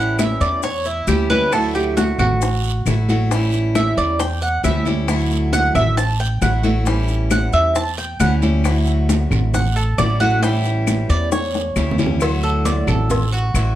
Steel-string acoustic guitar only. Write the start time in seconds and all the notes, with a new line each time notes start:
Already playing: E3 G3 C#4 E4
0.63 muted steel-string acoustic guitar stroke
1.08 E3 G3 C#4 E4
1.30 G3 C#4 E4
1.52 D3 F#3 A3 E4 F#4
2.42 muted steel-string acoustic guitar stroke
2.86 F#3 A3 E4 F#4
3.09 F#3 A3 E4 F#4
3.31 E3 G3 C#4 E4
4.20 muted steel-string acoustic guitar stroke
4.63 E3 G3 C#4 E4
4.85 G3 C#4 E4
5.08 D3 F#3 A3 E4 F#4
5.98 muted steel-string acoustic guitar stroke
6.41 F#3 A3 E4 F#4
6.63 F#3 A3 E4 F#4
6.85 E3 G3 C#4 E4
7.75 muted steel-string acoustic guitar stroke
8.20 E3 G3 C#4 E4
8.42 G3 C#4 E4
8.64 D3 F#3 A3 E4 F#4
9.54 muted steel-string acoustic guitar stroke
9.99 F#3 A3 E4 F#4
10.21 F#3 A3 E4 F#4
10.43 E3 G3 C#4 E4
11.31 muted steel-string acoustic guitar stroke
11.76 E3 G3 C#4 E4
11.98 G3 C#4 E4
12.20 D3 F#3 A3 E4 F#4
13.10 muted steel-string acoustic guitar stroke
13.55 F#3 A3 E4 F#4